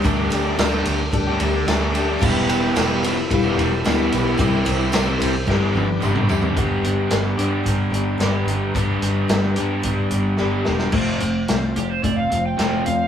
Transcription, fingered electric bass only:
X:1
M:4/4
L:1/8
Q:1/4=110
K:G
V:1 name="Fingered electric bass" clef=bass
D,, D,, D,, D,, D,, D,, D,,2 | E,,,2 E,,,2 E,,, E,,, D,, B,,, | C,, C,, C,, C,, G,,, G,,, G,,,2 | G,,, G,,, G,,, G,, G,,, G,,, G,,, G,,, |
G,,, G,,, G,,, G,, G,,, G,,, G,,, E,,, | [K:Flyd] F,,, F,,, C,, F,,, F,,, F,,, F,,, F,, |]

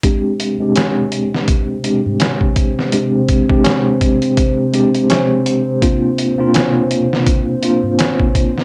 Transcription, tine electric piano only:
X:1
M:4/4
L:1/16
Q:"Swing 16ths" 1/4=83
K:Ablyd
V:1 name="Tine electric piano"
[A,CDG]3 [A,CDG]6- [A,CDG] [A,CDG]6 | [A,CDG]3 [A,CDG]6- [A,CDG] [A,CDG]6 | [B,CDF]3 [B,CDF]6- [B,CDF] [B,CDF]6 |]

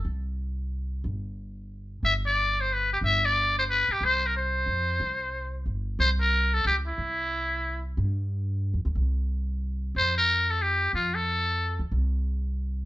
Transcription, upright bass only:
X:1
M:3/4
L:1/8
Q:"Swing" 1/4=182
K:Cmix
V:1 name="Upright bass" clef=bass
C,,6 | G,,,6 | G,,,6 | G,,,4- G,,, z |
C,,4 F,,2 | C,,4 G,,,2 | C,,4 _D,,2 | C,,6 |
G,,4- (3G,, E,, D,, | C,,6 | F,,6 | F,,4- F,, _D,, |
C,,6 |]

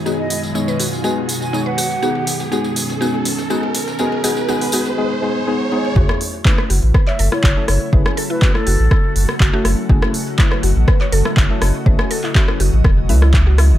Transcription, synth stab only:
X:1
M:4/4
L:1/16
Q:1/4=122
K:F#dor
V:1 name="Synth stab"
[G,B,DG]2 z2 [G,B,Dc]2 z2 [G,B,DG]2 z2 [G,B,Dc]2 z2 | [G,B,DG]2 z2 [G,B,DG]2 z2 [G,B,DG]2 z2 [G,B,DG]2 z2 | [G,B,DG]2 [G,B,DG]2 [G,B,DG]2 [G,B,DG]2 [G,B,DG]2 [G,B,DG]2 [G,B,DG]2 [G,B,DG]2 | [A,CEG]2 z2 [A,CEB]2 z6 z [A,CEA]3 |
[A,CEG]2 z2 [A,CEB]2 z6 z [A,CEA]3 | [A,CEG]2 z2 [A,CEB]2 z6 z [A,CEA]3 | [A,CEG]2 z2 [A,CEB]2 z4 [A,CEB] z4 z |]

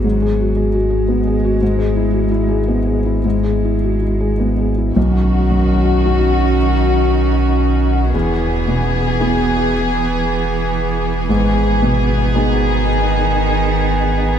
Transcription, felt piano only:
X:1
M:3/4
L:1/8
Q:1/4=114
K:Elyd
V:1 name="Felt piano"
(3[G,,F] G F (3G F G (3B, G F | (3G,, G E (3F E G (3B, G E | (3G,, G E (3F E G (3B, G E | B,,,2 F,,2 [CDF]2- |
[CDF]6 | E,,2 B,,2 [B,EG]2- | [B,EG]6 | G,,2 B,,2 [B,DG]2- |
[B,DG]6 |]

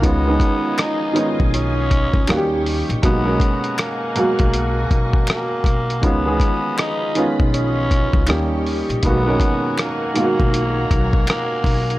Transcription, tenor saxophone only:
X:1
M:4/4
L:1/8
Q:"Swing 16ths" 1/4=80
K:G#dor
V:1 name="Tenor saxophone"
B,2 D z C3 z | B,2 A,4 A,2 | B,2 D z C3 z | B,2 A,4 A,2 |]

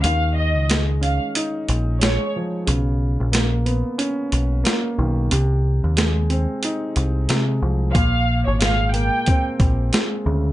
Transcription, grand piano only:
X:1
M:4/4
L:1/8
Q:"Swing 16ths" 1/4=91
K:Ebmix
V:1 name="Grand piano" clef=bass
E,2 A, D E2 A, F, | ^C,2 ^A, =B, ^C2 A, ^D, | C,2 A, C E2 A, F, | B,,2 A, B, C2 A, D, |]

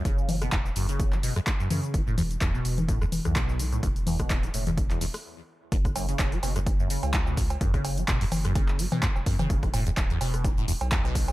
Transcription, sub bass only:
X:1
M:4/4
L:1/16
Q:"Swing 16ths" 1/4=127
K:F#m
V:1 name="Sub bass" clef=bass
F,,,4 E,,, z F,,,4- F,,, z3 F,, z | E,,,4 D,,, z E,,,4- E,,, B,,,4- B,,, | E,,,4 D,,, z E,,,4- E,,, z4 z | F,,,4 E,,, z F,,,4- F,,, C,,4- C,, |
F,,,4 E,,, z F,,,4- F,,, z2 E,,, F,, F,,, | E,,,4 D,,, z E,,,4- E,,, B,,,4- B,,, |]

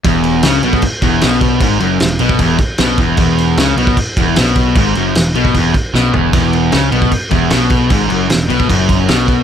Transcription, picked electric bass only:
X:1
M:4/4
L:1/8
Q:1/4=153
K:E
V:1 name="Picked electric bass" clef=bass
E,,,2 C,, B,,, z E,,, B,,,2 | G,,, F,,, E,,, B,,, E,,, z B,,, E,,, | E,,,2 C,, B,,, z E,,, B,,,2 | G,,, F,,, E,,, B,,, E,,, z B,,, E,,, |
E,,,2 C,, B,,, z E,,, B,,,2 | G,,, F,,, E,,, B,,, F,,,2 B,,,2 |]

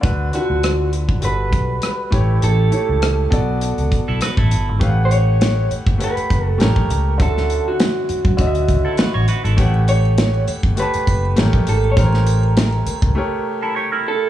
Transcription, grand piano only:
X:1
M:4/4
L:1/16
Q:"Swing 16ths" 1/4=101
K:Amix
V:1 name="Grand piano"
[D,DFB]2 [D,D=F^FB]6 [G,FAB]6 [A,EGc]2- | [A,EGc]2 [A,EGc]4 [B,FAd]6- [B,FAd] z3 | [A,GBc=f^f]6- [A,GBc=f^f] z [A,GBcf]4 [A,G_Bc]4 | [D,CFe]6- [D,CFe] z [D,CF_e=e]6- [D,CF_e=e] z |
[A,GBcf]6- [A,GBcf] z [A,GBca]4 [A,G_Bc]4 | [A,G_B=c^c]6- [A,GB=c^c] z [A,GBc]6- [A,GBc] z |]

